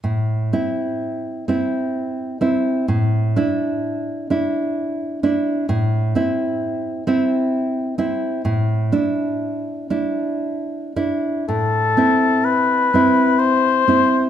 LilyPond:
<<
  \new Staff \with { instrumentName = "Oboe" } { \time 3/4 \key a \minor \tempo 4 = 63 r2. | r2. | r2. | r2. |
a'4 b'4 c''4 | }
  \new Staff \with { instrumentName = "Nylon-string guitar" } { \time 3/4 \key a \minor a,8 <c' e'>4 <c' e'>4 <c' e'>8 | a,8 <d' e'>4 <d' e'>4 <d' e'>8 | a,8 <c' e'>4 <c' e'>4 <c' e'>8 | a,8 <d' e'>4 <d' e'>4 <d' e'>8 |
a,8 <c' e'>4 <c' e'>4 <c' e'>8 | }
>>